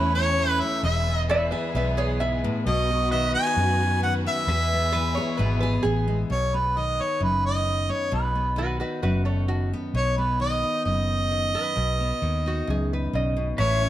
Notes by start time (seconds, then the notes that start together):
Already playing: E2 E3 A3 C#4 E4 B4 C#5 E5
0.14 E4 C#5
0.39 E3 C#4
0.49 B4
0.60 A3 E5
0.83 E1 E2 G#3 B3 G#4 B4 E5
1.07 B3
1.29 E3 B4 C#5 E5
1.51 G#4 B4 E5
1.75 B1 B2 B3 B4 E5
1.97 G#4 C#5
2.20 G#2 E5
2.44 A2
2.66 B1 B2 D#4 F#4 B4 D#5
2.91 F#4
3.11 D#3 B4 D#5 E5
3.33 E4 D#5 G#5
3.47 F#4
3.57 F#2 F#4
3.83 F#4
4.03 D#3 F#4 F#5
4.26 B3 E5
4.47 E2 G#3 E4 G#4 B4 E5
4.73 B3
4.92 E3 B4
5.15 G#4 C#5
5.37 G#1 B2 B3 B4
5.61 G#4 B4
5.83 A1 E3 B3 G#4
6.08 G#3
6.30 B1 B2 C#5
6.54 B3 B4
6.77 D#3 D#5
7.00 D#4 C#5
7.21 F#1 F#2 B4
7.46 D#5
7.66 D#3
7.89 B3 C#5
8.12 B1 B2 B4
8.35 B3
8.56 D#3 F#4 B4
8.80 D#4 F#4 B4
9.03 F#1 F#2 F#4 B4
9.25 A4 C#5
9.48 D#3 F#4
9.73 B3
9.94 B1 B2 C#5
10.18 B3 B4
10.40 D#3 D#5
10.63 D#4
10.85 F#1 F#2 D#5
11.31 D#3
11.54 B3 B4
11.76 B1 B2
12.00 B3
12.22 D#2 D#3
12.46 D#4 F#4
12.67 C#2 F#2 G#4
12.93 B4
13.13 B1 C#3 D#5
13.37 B2
13.58 A1 A2 A3 C#4 E4 B4 C#5 E5
13.81 C#4 C#5